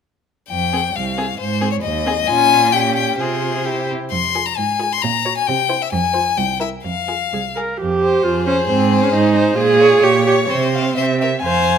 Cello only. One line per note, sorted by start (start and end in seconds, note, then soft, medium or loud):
0.49 0.88 F2 soft
0.95 1.32 C2 soft
1.39 1.76 G#2 medium
1.83 2.20 D#2 medium
2.28 3.15 A#2 medium
3.19 3.90 C3 soft
4.12 4.48 F2 medium
4.58 4.94 G#2 soft
5.04 5.39 A#2 medium
5.48 5.83 C3 medium
5.93 6.28 F2 medium
6.38 6.74 C2 soft
6.84 7.22 F2 soft
7.33 7.70 C2 soft
7.80 8.20 F2 soft
8.25 8.64 F2 soft
8.69 9.08 G#2 medium
9.13 9.52 G#2 medium
9.57 9.97 A#2 medium
10.03 10.44 A#2 medium
10.51 10.92 C3 medium
10.98 11.39 C3 medium
11.45 11.78 F2 medium